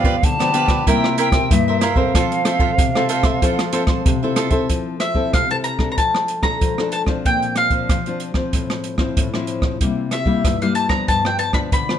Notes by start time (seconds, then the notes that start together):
Already playing: G2 F3 B3 D4 F5
0.04 F4 G4 B4 D5, kick
0.23 D3 A5, kick, closed hi-hat
0.39 F3 B3 D4 G4 B4 D5, cross-stick, closed hi-hat
0.53 F3 B3 D4 F4 G4 B4 D5, closed hi-hat
0.68 G4 B4 D5, kick, cross-stick, closed hi-hat
0.87 C3 G3 A#3 E4 A#4 C5 E5 G5, kick, closed hi-hat
1.04 cross-stick
1.18 E4 A#4 C5 E5 G5, closed hi-hat
1.32 A#4 C5 E5, kick, cross-stick, closed hi-hat
1.50 G2 G3 A#3 E4 E5, kick, closed hi-hat
1.68 A#4 C5 E5
1.81 E4 A#4 C5 E5 F5, cross-stick, closed hi-hat
1.96 C4 A4 A#4 C5 E5, kick
2.15 F3 F4 A4 C5, kick, cross-stick, closed hi-hat
2.32 closed hi-hat
2.45 C4 F4 A4 C5 E5, cross-stick, closed hi-hat
2.59 F4 A4 C5 E5, kick
2.78 C3, kick, closed hi-hat
2.95 C4 A4 C5 E5, cross-stick
3.09 F4 A4 C5 E5, closed hi-hat
3.23 A4 C5 E5, kick, cross-stick, closed hi-hat
3.42 F3 C4 E4 F4 A4 C5, kick, closed hi-hat
3.59 cross-stick, closed hi-hat
3.72 C4 F4 A4 C5 E5, closed hi-hat
3.87 A4 C5, kick, cross-stick, closed hi-hat
4.06 C3, kick, closed hi-hat
4.23 C4 E4 A4 C5 E5
4.36 F4 A4 C5 E5, cross-stick, closed hi-hat
4.50 C4 E4 A4 C5 E5, kick, closed hi-hat
4.69 F3, kick, closed hi-hat
5.00 E5, cross-stick, closed hi-hat
5.15 C4 E4 A4, kick
5.33 C3 F5, kick, cross-stick, closed hi-hat
5.50 C4 E4 A4 A5, closed hi-hat
5.64 A#5, closed hi-hat
5.79 A3 D4 A4, kick, cross-stick
5.92 A#5
5.98 F3 A5, kick, closed hi-hat
6.15 cross-stick
6.28 closed hi-hat
6.43 A3 D4 A4 A#5, kick, cross-stick
6.61 F3, kick, closed hi-hat
6.78 A3 D4 A4, cross-stick
6.92 A5, closed hi-hat
7.06 F3 C4 D4, kick, cross-stick
7.25 A#2 G5, kick, closed hi-hat
7.42 closed hi-hat
7.56 F5, cross-stick, closed hi-hat
7.70 F3 C4 D4, kick, closed hi-hat
7.89 F3, kick, cross-stick, closed hi-hat
8.06 F3 C4 D4, closed hi-hat
8.20 closed hi-hat
8.34 F3 C4, kick, cross-stick
8.53 A2, kick, closed hi-hat
8.70 cross-stick, closed hi-hat
8.84 closed hi-hat
8.98 F3 C4 E4, kick, cross-stick
9.17 A2, kick, closed hi-hat
9.34 F3 C4 E4, cross-stick
9.47 closed hi-hat
9.62 kick, cross-stick
9.81 C3 G3 A#3 E4, kick, closed hi-hat
10.11 E5, cross-stick, closed hi-hat
10.26 G3 A#3 E4, kick
10.44 G2, kick, cross-stick, closed hi-hat
10.62 G3 A#3 E4 F5, closed hi-hat
10.75 A5, closed hi-hat
10.89 F3 B3 D4 A#5, kick, cross-stick
11.08 G2 A5, kick, closed hi-hat
11.25 G5, cross-stick
11.39 A5, closed hi-hat
11.53 F3 B3 D4 B5, kick, cross-stick
11.72 D3 B5, kick, closed hi-hat
11.89 F3 B3 D4, cross-stick